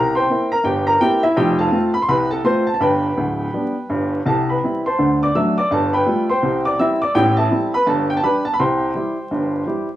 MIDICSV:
0, 0, Header, 1, 2, 480
1, 0, Start_track
1, 0, Key_signature, 0, "major"
1, 0, Tempo, 361446
1, 1810, Time_signature, 4, 2, 24, 8
1, 13231, End_track
2, 0, Start_track
2, 0, Title_t, "Upright piano"
2, 0, Program_c, 0, 0
2, 0, Note_on_c, 0, 36, 58
2, 0, Note_on_c, 0, 48, 65
2, 0, Note_on_c, 0, 70, 61
2, 0, Note_on_c, 0, 82, 83
2, 150, Note_off_c, 0, 82, 0
2, 182, Note_off_c, 0, 70, 0
2, 199, Note_on_c, 0, 84, 77
2, 214, Note_on_c, 0, 79, 65
2, 220, Note_on_c, 0, 72, 59
2, 300, Note_off_c, 0, 36, 0
2, 301, Note_off_c, 0, 48, 0
2, 392, Note_on_c, 0, 60, 37
2, 395, Note_on_c, 0, 58, 39
2, 401, Note_on_c, 0, 64, 38
2, 603, Note_off_c, 0, 84, 0
2, 649, Note_off_c, 0, 79, 0
2, 650, Note_off_c, 0, 60, 0
2, 652, Note_off_c, 0, 58, 0
2, 652, Note_off_c, 0, 72, 0
2, 656, Note_off_c, 0, 64, 0
2, 686, Note_on_c, 0, 82, 82
2, 700, Note_on_c, 0, 70, 62
2, 833, Note_off_c, 0, 82, 0
2, 844, Note_on_c, 0, 43, 51
2, 850, Note_on_c, 0, 31, 63
2, 854, Note_off_c, 0, 70, 0
2, 856, Note_on_c, 0, 79, 72
2, 867, Note_on_c, 0, 67, 62
2, 1107, Note_off_c, 0, 79, 0
2, 1137, Note_off_c, 0, 67, 0
2, 1152, Note_on_c, 0, 82, 82
2, 1165, Note_on_c, 0, 70, 62
2, 1255, Note_off_c, 0, 43, 0
2, 1258, Note_off_c, 0, 31, 0
2, 1305, Note_off_c, 0, 82, 0
2, 1326, Note_off_c, 0, 70, 0
2, 1337, Note_on_c, 0, 79, 94
2, 1338, Note_on_c, 0, 58, 46
2, 1341, Note_on_c, 0, 60, 53
2, 1342, Note_on_c, 0, 64, 49
2, 1352, Note_on_c, 0, 67, 66
2, 1588, Note_off_c, 0, 79, 0
2, 1600, Note_off_c, 0, 58, 0
2, 1602, Note_off_c, 0, 60, 0
2, 1603, Note_off_c, 0, 64, 0
2, 1620, Note_off_c, 0, 67, 0
2, 1632, Note_on_c, 0, 76, 90
2, 1650, Note_on_c, 0, 64, 72
2, 1785, Note_off_c, 0, 76, 0
2, 1809, Note_off_c, 0, 64, 0
2, 1809, Note_on_c, 0, 41, 73
2, 1810, Note_on_c, 0, 29, 65
2, 1816, Note_on_c, 0, 79, 86
2, 1822, Note_on_c, 0, 67, 72
2, 2067, Note_off_c, 0, 79, 0
2, 2095, Note_off_c, 0, 67, 0
2, 2104, Note_on_c, 0, 81, 77
2, 2117, Note_on_c, 0, 69, 53
2, 2119, Note_on_c, 0, 77, 60
2, 2218, Note_off_c, 0, 29, 0
2, 2218, Note_off_c, 0, 41, 0
2, 2278, Note_on_c, 0, 57, 45
2, 2284, Note_on_c, 0, 60, 47
2, 2287, Note_on_c, 0, 65, 49
2, 2514, Note_off_c, 0, 81, 0
2, 2545, Note_off_c, 0, 57, 0
2, 2550, Note_off_c, 0, 60, 0
2, 2552, Note_off_c, 0, 65, 0
2, 2560, Note_off_c, 0, 69, 0
2, 2561, Note_off_c, 0, 77, 0
2, 2572, Note_on_c, 0, 83, 84
2, 2672, Note_off_c, 0, 83, 0
2, 2683, Note_on_c, 0, 84, 86
2, 2766, Note_on_c, 0, 36, 56
2, 2767, Note_on_c, 0, 48, 59
2, 2769, Note_on_c, 0, 83, 84
2, 2772, Note_off_c, 0, 84, 0
2, 2788, Note_on_c, 0, 71, 61
2, 3024, Note_off_c, 0, 83, 0
2, 3058, Note_off_c, 0, 71, 0
2, 3065, Note_on_c, 0, 81, 82
2, 3080, Note_on_c, 0, 69, 70
2, 3176, Note_off_c, 0, 36, 0
2, 3177, Note_off_c, 0, 48, 0
2, 3221, Note_off_c, 0, 81, 0
2, 3244, Note_off_c, 0, 69, 0
2, 3247, Note_on_c, 0, 57, 44
2, 3249, Note_on_c, 0, 60, 45
2, 3250, Note_on_c, 0, 84, 88
2, 3257, Note_on_c, 0, 65, 47
2, 3269, Note_on_c, 0, 72, 74
2, 3504, Note_off_c, 0, 84, 0
2, 3512, Note_off_c, 0, 57, 0
2, 3514, Note_off_c, 0, 60, 0
2, 3519, Note_off_c, 0, 65, 0
2, 3538, Note_off_c, 0, 72, 0
2, 3544, Note_on_c, 0, 81, 76
2, 3621, Note_off_c, 0, 81, 0
2, 3641, Note_on_c, 0, 81, 74
2, 3720, Note_on_c, 0, 31, 57
2, 3724, Note_on_c, 0, 43, 58
2, 3730, Note_on_c, 0, 83, 70
2, 3731, Note_off_c, 0, 81, 0
2, 3740, Note_on_c, 0, 71, 57
2, 3746, Note_on_c, 0, 79, 61
2, 4108, Note_off_c, 0, 31, 0
2, 4111, Note_off_c, 0, 43, 0
2, 4213, Note_on_c, 0, 26, 57
2, 4216, Note_on_c, 0, 38, 58
2, 4596, Note_off_c, 0, 26, 0
2, 4598, Note_off_c, 0, 38, 0
2, 4698, Note_on_c, 0, 62, 32
2, 4700, Note_on_c, 0, 55, 34
2, 4701, Note_on_c, 0, 59, 30
2, 4960, Note_off_c, 0, 62, 0
2, 4961, Note_off_c, 0, 55, 0
2, 4962, Note_off_c, 0, 59, 0
2, 5171, Note_on_c, 0, 31, 60
2, 5175, Note_on_c, 0, 43, 61
2, 5208, Note_off_c, 0, 83, 0
2, 5420, Note_off_c, 0, 71, 0
2, 5423, Note_off_c, 0, 79, 0
2, 5555, Note_off_c, 0, 31, 0
2, 5557, Note_off_c, 0, 43, 0
2, 5649, Note_on_c, 0, 48, 62
2, 5651, Note_on_c, 0, 36, 61
2, 5662, Note_on_c, 0, 81, 76
2, 5681, Note_on_c, 0, 69, 56
2, 5911, Note_off_c, 0, 81, 0
2, 5944, Note_off_c, 0, 69, 0
2, 5968, Note_on_c, 0, 83, 54
2, 5983, Note_on_c, 0, 71, 40
2, 6057, Note_off_c, 0, 48, 0
2, 6058, Note_off_c, 0, 36, 0
2, 6153, Note_on_c, 0, 55, 33
2, 6162, Note_on_c, 0, 60, 34
2, 6163, Note_on_c, 0, 64, 42
2, 6367, Note_off_c, 0, 83, 0
2, 6410, Note_off_c, 0, 55, 0
2, 6413, Note_off_c, 0, 71, 0
2, 6417, Note_off_c, 0, 60, 0
2, 6418, Note_off_c, 0, 64, 0
2, 6455, Note_on_c, 0, 84, 75
2, 6470, Note_on_c, 0, 72, 52
2, 6472, Note_on_c, 0, 81, 54
2, 6622, Note_on_c, 0, 50, 53
2, 6624, Note_on_c, 0, 38, 53
2, 6851, Note_off_c, 0, 84, 0
2, 6896, Note_off_c, 0, 72, 0
2, 6898, Note_off_c, 0, 81, 0
2, 6941, Note_on_c, 0, 86, 75
2, 6952, Note_on_c, 0, 74, 58
2, 7025, Note_off_c, 0, 38, 0
2, 7025, Note_off_c, 0, 50, 0
2, 7081, Note_off_c, 0, 86, 0
2, 7100, Note_off_c, 0, 74, 0
2, 7105, Note_on_c, 0, 54, 42
2, 7106, Note_on_c, 0, 57, 44
2, 7107, Note_on_c, 0, 88, 78
2, 7117, Note_on_c, 0, 62, 40
2, 7122, Note_on_c, 0, 76, 55
2, 7353, Note_off_c, 0, 88, 0
2, 7364, Note_off_c, 0, 54, 0
2, 7365, Note_off_c, 0, 57, 0
2, 7373, Note_off_c, 0, 62, 0
2, 7384, Note_off_c, 0, 76, 0
2, 7405, Note_on_c, 0, 86, 81
2, 7422, Note_on_c, 0, 74, 61
2, 7552, Note_off_c, 0, 86, 0
2, 7575, Note_off_c, 0, 74, 0
2, 7576, Note_on_c, 0, 31, 58
2, 7584, Note_on_c, 0, 43, 60
2, 7592, Note_on_c, 0, 81, 76
2, 7606, Note_on_c, 0, 69, 61
2, 7836, Note_off_c, 0, 81, 0
2, 7866, Note_off_c, 0, 69, 0
2, 7876, Note_on_c, 0, 83, 72
2, 7892, Note_on_c, 0, 79, 63
2, 7896, Note_on_c, 0, 71, 59
2, 7981, Note_off_c, 0, 31, 0
2, 7985, Note_off_c, 0, 43, 0
2, 8049, Note_on_c, 0, 55, 42
2, 8053, Note_on_c, 0, 57, 36
2, 8057, Note_on_c, 0, 65, 40
2, 8280, Note_off_c, 0, 83, 0
2, 8313, Note_off_c, 0, 55, 0
2, 8316, Note_off_c, 0, 57, 0
2, 8319, Note_off_c, 0, 65, 0
2, 8327, Note_off_c, 0, 79, 0
2, 8329, Note_off_c, 0, 71, 0
2, 8360, Note_on_c, 0, 84, 83
2, 8375, Note_on_c, 0, 79, 54
2, 8376, Note_on_c, 0, 72, 69
2, 8535, Note_on_c, 0, 36, 49
2, 8536, Note_on_c, 0, 48, 60
2, 8763, Note_off_c, 0, 84, 0
2, 8808, Note_off_c, 0, 79, 0
2, 8809, Note_off_c, 0, 72, 0
2, 8835, Note_on_c, 0, 86, 90
2, 8855, Note_on_c, 0, 74, 66
2, 8940, Note_off_c, 0, 36, 0
2, 8940, Note_off_c, 0, 48, 0
2, 8986, Note_off_c, 0, 86, 0
2, 9010, Note_off_c, 0, 74, 0
2, 9017, Note_on_c, 0, 55, 43
2, 9022, Note_on_c, 0, 88, 91
2, 9024, Note_on_c, 0, 60, 46
2, 9032, Note_on_c, 0, 64, 54
2, 9041, Note_on_c, 0, 76, 67
2, 9270, Note_off_c, 0, 88, 0
2, 9278, Note_off_c, 0, 55, 0
2, 9284, Note_off_c, 0, 60, 0
2, 9289, Note_off_c, 0, 64, 0
2, 9303, Note_off_c, 0, 76, 0
2, 9316, Note_on_c, 0, 86, 88
2, 9336, Note_on_c, 0, 74, 69
2, 9466, Note_off_c, 0, 86, 0
2, 9490, Note_on_c, 0, 45, 73
2, 9491, Note_off_c, 0, 74, 0
2, 9493, Note_on_c, 0, 79, 94
2, 9497, Note_on_c, 0, 33, 69
2, 9514, Note_on_c, 0, 67, 71
2, 9745, Note_off_c, 0, 79, 0
2, 9780, Note_off_c, 0, 67, 0
2, 9782, Note_on_c, 0, 81, 82
2, 9796, Note_on_c, 0, 76, 56
2, 9799, Note_on_c, 0, 69, 55
2, 9897, Note_off_c, 0, 45, 0
2, 9901, Note_off_c, 0, 33, 0
2, 9974, Note_on_c, 0, 60, 44
2, 9975, Note_on_c, 0, 55, 44
2, 9978, Note_on_c, 0, 64, 46
2, 10192, Note_off_c, 0, 81, 0
2, 10236, Note_off_c, 0, 60, 0
2, 10237, Note_off_c, 0, 55, 0
2, 10238, Note_off_c, 0, 76, 0
2, 10239, Note_off_c, 0, 64, 0
2, 10239, Note_off_c, 0, 69, 0
2, 10278, Note_on_c, 0, 83, 86
2, 10293, Note_on_c, 0, 71, 68
2, 10427, Note_off_c, 0, 83, 0
2, 10445, Note_on_c, 0, 31, 58
2, 10445, Note_on_c, 0, 43, 63
2, 10446, Note_on_c, 0, 81, 71
2, 10449, Note_off_c, 0, 71, 0
2, 10463, Note_on_c, 0, 69, 61
2, 10700, Note_off_c, 0, 81, 0
2, 10733, Note_off_c, 0, 69, 0
2, 10753, Note_on_c, 0, 79, 80
2, 10840, Note_off_c, 0, 79, 0
2, 10846, Note_on_c, 0, 81, 86
2, 10854, Note_off_c, 0, 31, 0
2, 10854, Note_off_c, 0, 43, 0
2, 10926, Note_on_c, 0, 55, 37
2, 10932, Note_off_c, 0, 81, 0
2, 10933, Note_on_c, 0, 62, 37
2, 10935, Note_on_c, 0, 67, 50
2, 10935, Note_on_c, 0, 83, 83
2, 10953, Note_on_c, 0, 71, 63
2, 11185, Note_off_c, 0, 83, 0
2, 11191, Note_off_c, 0, 55, 0
2, 11195, Note_off_c, 0, 62, 0
2, 11197, Note_off_c, 0, 67, 0
2, 11218, Note_off_c, 0, 71, 0
2, 11219, Note_on_c, 0, 81, 85
2, 11313, Note_off_c, 0, 81, 0
2, 11333, Note_on_c, 0, 83, 74
2, 11411, Note_on_c, 0, 36, 60
2, 11412, Note_on_c, 0, 48, 64
2, 11413, Note_on_c, 0, 84, 79
2, 11415, Note_off_c, 0, 83, 0
2, 11428, Note_on_c, 0, 72, 52
2, 11435, Note_on_c, 0, 79, 57
2, 11817, Note_off_c, 0, 36, 0
2, 11818, Note_off_c, 0, 48, 0
2, 11885, Note_on_c, 0, 55, 34
2, 11894, Note_on_c, 0, 64, 39
2, 11901, Note_on_c, 0, 67, 33
2, 12149, Note_off_c, 0, 55, 0
2, 12156, Note_off_c, 0, 64, 0
2, 12161, Note_off_c, 0, 67, 0
2, 12367, Note_on_c, 0, 31, 53
2, 12368, Note_on_c, 0, 43, 46
2, 12774, Note_off_c, 0, 31, 0
2, 12775, Note_off_c, 0, 43, 0
2, 12834, Note_on_c, 0, 55, 40
2, 12843, Note_on_c, 0, 64, 31
2, 12849, Note_on_c, 0, 67, 43
2, 12887, Note_off_c, 0, 84, 0
2, 13101, Note_off_c, 0, 55, 0
2, 13102, Note_off_c, 0, 72, 0
2, 13105, Note_off_c, 0, 79, 0
2, 13107, Note_off_c, 0, 64, 0
2, 13112, Note_off_c, 0, 67, 0
2, 13231, End_track
0, 0, End_of_file